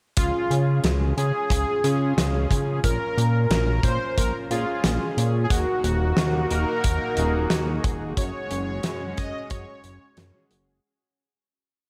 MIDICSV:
0, 0, Header, 1, 6, 480
1, 0, Start_track
1, 0, Key_signature, -5, "major"
1, 0, Tempo, 666667
1, 125, Time_signature, 4, 2, 24, 8
1, 8564, End_track
2, 0, Start_track
2, 0, Title_t, "Supersaw synth"
2, 0, Program_c, 0, 81
2, 126, Note_on_c, 0, 65, 125
2, 577, Note_off_c, 0, 65, 0
2, 843, Note_on_c, 0, 68, 123
2, 1775, Note_off_c, 0, 68, 0
2, 2044, Note_on_c, 0, 70, 108
2, 2514, Note_off_c, 0, 70, 0
2, 2523, Note_on_c, 0, 70, 103
2, 2762, Note_on_c, 0, 72, 113
2, 2771, Note_off_c, 0, 70, 0
2, 3003, Note_on_c, 0, 70, 108
2, 3011, Note_off_c, 0, 72, 0
2, 3104, Note_off_c, 0, 70, 0
2, 3244, Note_on_c, 0, 65, 92
2, 3696, Note_off_c, 0, 65, 0
2, 3916, Note_on_c, 0, 68, 71
2, 3964, Note_on_c, 0, 66, 106
2, 3966, Note_off_c, 0, 68, 0
2, 4684, Note_on_c, 0, 70, 127
2, 4706, Note_off_c, 0, 66, 0
2, 5616, Note_off_c, 0, 70, 0
2, 5887, Note_on_c, 0, 73, 110
2, 6605, Note_on_c, 0, 75, 111
2, 6627, Note_off_c, 0, 73, 0
2, 6828, Note_off_c, 0, 75, 0
2, 6845, Note_on_c, 0, 73, 105
2, 7536, Note_off_c, 0, 73, 0
2, 8564, End_track
3, 0, Start_track
3, 0, Title_t, "Analog polysynth"
3, 0, Program_c, 1, 90
3, 125, Note_on_c, 1, 61, 80
3, 125, Note_on_c, 1, 65, 71
3, 125, Note_on_c, 1, 68, 87
3, 816, Note_off_c, 1, 61, 0
3, 816, Note_off_c, 1, 65, 0
3, 816, Note_off_c, 1, 68, 0
3, 844, Note_on_c, 1, 65, 68
3, 844, Note_on_c, 1, 68, 85
3, 845, Note_on_c, 1, 61, 75
3, 1296, Note_off_c, 1, 61, 0
3, 1296, Note_off_c, 1, 65, 0
3, 1296, Note_off_c, 1, 68, 0
3, 1325, Note_on_c, 1, 61, 94
3, 1325, Note_on_c, 1, 65, 85
3, 1325, Note_on_c, 1, 68, 104
3, 2016, Note_off_c, 1, 61, 0
3, 2016, Note_off_c, 1, 65, 0
3, 2016, Note_off_c, 1, 68, 0
3, 2044, Note_on_c, 1, 61, 82
3, 2044, Note_on_c, 1, 65, 72
3, 2044, Note_on_c, 1, 70, 87
3, 2736, Note_off_c, 1, 61, 0
3, 2736, Note_off_c, 1, 65, 0
3, 2736, Note_off_c, 1, 70, 0
3, 2764, Note_on_c, 1, 65, 68
3, 2764, Note_on_c, 1, 70, 82
3, 2765, Note_on_c, 1, 61, 77
3, 3216, Note_off_c, 1, 61, 0
3, 3216, Note_off_c, 1, 65, 0
3, 3216, Note_off_c, 1, 70, 0
3, 3245, Note_on_c, 1, 65, 85
3, 3246, Note_on_c, 1, 61, 91
3, 3246, Note_on_c, 1, 68, 104
3, 3936, Note_off_c, 1, 65, 0
3, 3936, Note_off_c, 1, 68, 0
3, 3937, Note_off_c, 1, 61, 0
3, 3966, Note_on_c, 1, 63, 78
3, 3966, Note_on_c, 1, 66, 72
3, 3966, Note_on_c, 1, 70, 86
3, 4657, Note_off_c, 1, 63, 0
3, 4657, Note_off_c, 1, 66, 0
3, 4657, Note_off_c, 1, 70, 0
3, 4685, Note_on_c, 1, 63, 76
3, 4685, Note_on_c, 1, 66, 69
3, 4685, Note_on_c, 1, 70, 87
3, 5136, Note_off_c, 1, 63, 0
3, 5136, Note_off_c, 1, 66, 0
3, 5136, Note_off_c, 1, 70, 0
3, 5165, Note_on_c, 1, 63, 96
3, 5166, Note_on_c, 1, 66, 86
3, 5166, Note_on_c, 1, 68, 101
3, 5856, Note_off_c, 1, 63, 0
3, 5856, Note_off_c, 1, 68, 0
3, 5857, Note_off_c, 1, 66, 0
3, 5886, Note_on_c, 1, 61, 78
3, 5886, Note_on_c, 1, 66, 72
3, 5886, Note_on_c, 1, 68, 89
3, 6577, Note_off_c, 1, 61, 0
3, 6577, Note_off_c, 1, 66, 0
3, 6577, Note_off_c, 1, 68, 0
3, 6606, Note_on_c, 1, 61, 77
3, 6606, Note_on_c, 1, 66, 69
3, 6606, Note_on_c, 1, 68, 84
3, 7057, Note_off_c, 1, 61, 0
3, 7057, Note_off_c, 1, 66, 0
3, 7057, Note_off_c, 1, 68, 0
3, 7446, Note_on_c, 1, 61, 78
3, 7446, Note_on_c, 1, 66, 68
3, 7446, Note_on_c, 1, 68, 85
3, 7777, Note_off_c, 1, 61, 0
3, 7777, Note_off_c, 1, 66, 0
3, 7777, Note_off_c, 1, 68, 0
3, 8564, End_track
4, 0, Start_track
4, 0, Title_t, "Analog synth pad"
4, 0, Program_c, 2, 89
4, 3962, Note_on_c, 2, 66, 92
4, 3963, Note_on_c, 2, 58, 81
4, 3963, Note_on_c, 2, 63, 76
4, 5865, Note_off_c, 2, 58, 0
4, 5865, Note_off_c, 2, 63, 0
4, 5886, Note_on_c, 2, 61, 79
4, 5887, Note_on_c, 2, 56, 85
4, 7775, Note_off_c, 2, 66, 0
4, 7786, Note_off_c, 2, 61, 0
4, 7787, Note_off_c, 2, 56, 0
4, 8564, End_track
5, 0, Start_track
5, 0, Title_t, "Analog synth bass"
5, 0, Program_c, 3, 38
5, 124, Note_on_c, 3, 37, 93
5, 230, Note_off_c, 3, 37, 0
5, 364, Note_on_c, 3, 49, 102
5, 575, Note_off_c, 3, 49, 0
5, 604, Note_on_c, 3, 37, 105
5, 815, Note_off_c, 3, 37, 0
5, 845, Note_on_c, 3, 49, 88
5, 950, Note_off_c, 3, 49, 0
5, 1082, Note_on_c, 3, 37, 90
5, 1189, Note_off_c, 3, 37, 0
5, 1325, Note_on_c, 3, 49, 101
5, 1536, Note_off_c, 3, 49, 0
5, 1565, Note_on_c, 3, 37, 98
5, 1776, Note_off_c, 3, 37, 0
5, 1804, Note_on_c, 3, 49, 87
5, 2015, Note_off_c, 3, 49, 0
5, 2044, Note_on_c, 3, 34, 94
5, 2150, Note_off_c, 3, 34, 0
5, 2286, Note_on_c, 3, 46, 104
5, 2496, Note_off_c, 3, 46, 0
5, 2523, Note_on_c, 3, 34, 101
5, 2735, Note_off_c, 3, 34, 0
5, 2760, Note_on_c, 3, 46, 89
5, 2868, Note_off_c, 3, 46, 0
5, 3007, Note_on_c, 3, 34, 101
5, 3111, Note_off_c, 3, 34, 0
5, 3244, Note_on_c, 3, 46, 79
5, 3350, Note_off_c, 3, 46, 0
5, 3484, Note_on_c, 3, 34, 89
5, 3590, Note_off_c, 3, 34, 0
5, 3725, Note_on_c, 3, 46, 79
5, 3936, Note_off_c, 3, 46, 0
5, 3963, Note_on_c, 3, 39, 95
5, 4069, Note_off_c, 3, 39, 0
5, 4205, Note_on_c, 3, 27, 101
5, 4416, Note_off_c, 3, 27, 0
5, 4444, Note_on_c, 3, 39, 104
5, 4655, Note_off_c, 3, 39, 0
5, 4685, Note_on_c, 3, 27, 91
5, 4790, Note_off_c, 3, 27, 0
5, 4927, Note_on_c, 3, 39, 91
5, 5031, Note_off_c, 3, 39, 0
5, 5165, Note_on_c, 3, 27, 99
5, 5376, Note_off_c, 3, 27, 0
5, 5406, Note_on_c, 3, 39, 98
5, 5616, Note_off_c, 3, 39, 0
5, 5646, Note_on_c, 3, 27, 88
5, 5856, Note_off_c, 3, 27, 0
5, 5883, Note_on_c, 3, 42, 94
5, 5989, Note_off_c, 3, 42, 0
5, 6127, Note_on_c, 3, 30, 100
5, 6337, Note_off_c, 3, 30, 0
5, 6366, Note_on_c, 3, 42, 105
5, 6576, Note_off_c, 3, 42, 0
5, 6610, Note_on_c, 3, 30, 91
5, 6713, Note_off_c, 3, 30, 0
5, 6846, Note_on_c, 3, 42, 100
5, 6951, Note_off_c, 3, 42, 0
5, 7084, Note_on_c, 3, 30, 80
5, 7190, Note_off_c, 3, 30, 0
5, 7324, Note_on_c, 3, 42, 91
5, 7430, Note_off_c, 3, 42, 0
5, 7565, Note_on_c, 3, 30, 81
5, 7776, Note_off_c, 3, 30, 0
5, 8564, End_track
6, 0, Start_track
6, 0, Title_t, "Drums"
6, 120, Note_on_c, 9, 42, 107
6, 125, Note_on_c, 9, 36, 122
6, 192, Note_off_c, 9, 42, 0
6, 197, Note_off_c, 9, 36, 0
6, 367, Note_on_c, 9, 42, 77
6, 439, Note_off_c, 9, 42, 0
6, 602, Note_on_c, 9, 42, 92
6, 609, Note_on_c, 9, 38, 123
6, 674, Note_off_c, 9, 42, 0
6, 681, Note_off_c, 9, 38, 0
6, 848, Note_on_c, 9, 42, 73
6, 920, Note_off_c, 9, 42, 0
6, 1082, Note_on_c, 9, 36, 106
6, 1090, Note_on_c, 9, 42, 99
6, 1154, Note_off_c, 9, 36, 0
6, 1162, Note_off_c, 9, 42, 0
6, 1326, Note_on_c, 9, 42, 76
6, 1398, Note_off_c, 9, 42, 0
6, 1568, Note_on_c, 9, 38, 124
6, 1569, Note_on_c, 9, 42, 91
6, 1640, Note_off_c, 9, 38, 0
6, 1641, Note_off_c, 9, 42, 0
6, 1804, Note_on_c, 9, 36, 98
6, 1810, Note_on_c, 9, 42, 73
6, 1876, Note_off_c, 9, 36, 0
6, 1882, Note_off_c, 9, 42, 0
6, 2044, Note_on_c, 9, 36, 113
6, 2044, Note_on_c, 9, 42, 93
6, 2116, Note_off_c, 9, 36, 0
6, 2116, Note_off_c, 9, 42, 0
6, 2291, Note_on_c, 9, 42, 77
6, 2363, Note_off_c, 9, 42, 0
6, 2524, Note_on_c, 9, 42, 98
6, 2528, Note_on_c, 9, 38, 127
6, 2596, Note_off_c, 9, 42, 0
6, 2600, Note_off_c, 9, 38, 0
6, 2760, Note_on_c, 9, 36, 116
6, 2764, Note_on_c, 9, 42, 73
6, 2832, Note_off_c, 9, 36, 0
6, 2836, Note_off_c, 9, 42, 0
6, 3007, Note_on_c, 9, 36, 118
6, 3007, Note_on_c, 9, 42, 101
6, 3079, Note_off_c, 9, 36, 0
6, 3079, Note_off_c, 9, 42, 0
6, 3247, Note_on_c, 9, 42, 74
6, 3319, Note_off_c, 9, 42, 0
6, 3483, Note_on_c, 9, 38, 127
6, 3483, Note_on_c, 9, 42, 98
6, 3555, Note_off_c, 9, 38, 0
6, 3555, Note_off_c, 9, 42, 0
6, 3729, Note_on_c, 9, 42, 82
6, 3801, Note_off_c, 9, 42, 0
6, 3963, Note_on_c, 9, 36, 123
6, 3964, Note_on_c, 9, 42, 94
6, 4035, Note_off_c, 9, 36, 0
6, 4036, Note_off_c, 9, 42, 0
6, 4206, Note_on_c, 9, 42, 78
6, 4278, Note_off_c, 9, 42, 0
6, 4440, Note_on_c, 9, 38, 127
6, 4448, Note_on_c, 9, 42, 93
6, 4512, Note_off_c, 9, 38, 0
6, 4520, Note_off_c, 9, 42, 0
6, 4684, Note_on_c, 9, 42, 75
6, 4756, Note_off_c, 9, 42, 0
6, 4924, Note_on_c, 9, 42, 98
6, 4927, Note_on_c, 9, 36, 127
6, 4996, Note_off_c, 9, 42, 0
6, 4999, Note_off_c, 9, 36, 0
6, 5161, Note_on_c, 9, 42, 73
6, 5233, Note_off_c, 9, 42, 0
6, 5401, Note_on_c, 9, 38, 118
6, 5405, Note_on_c, 9, 42, 91
6, 5473, Note_off_c, 9, 38, 0
6, 5477, Note_off_c, 9, 42, 0
6, 5646, Note_on_c, 9, 36, 121
6, 5646, Note_on_c, 9, 42, 76
6, 5718, Note_off_c, 9, 36, 0
6, 5718, Note_off_c, 9, 42, 0
6, 5884, Note_on_c, 9, 36, 121
6, 5885, Note_on_c, 9, 42, 97
6, 5956, Note_off_c, 9, 36, 0
6, 5957, Note_off_c, 9, 42, 0
6, 6125, Note_on_c, 9, 42, 76
6, 6197, Note_off_c, 9, 42, 0
6, 6360, Note_on_c, 9, 42, 98
6, 6364, Note_on_c, 9, 38, 125
6, 6432, Note_off_c, 9, 42, 0
6, 6436, Note_off_c, 9, 38, 0
6, 6606, Note_on_c, 9, 42, 76
6, 6609, Note_on_c, 9, 36, 117
6, 6678, Note_off_c, 9, 42, 0
6, 6681, Note_off_c, 9, 36, 0
6, 6841, Note_on_c, 9, 42, 89
6, 6846, Note_on_c, 9, 36, 121
6, 6913, Note_off_c, 9, 42, 0
6, 6918, Note_off_c, 9, 36, 0
6, 7083, Note_on_c, 9, 42, 68
6, 7155, Note_off_c, 9, 42, 0
6, 7322, Note_on_c, 9, 42, 92
6, 7328, Note_on_c, 9, 38, 113
6, 7394, Note_off_c, 9, 42, 0
6, 7400, Note_off_c, 9, 38, 0
6, 7565, Note_on_c, 9, 42, 75
6, 7637, Note_off_c, 9, 42, 0
6, 8564, End_track
0, 0, End_of_file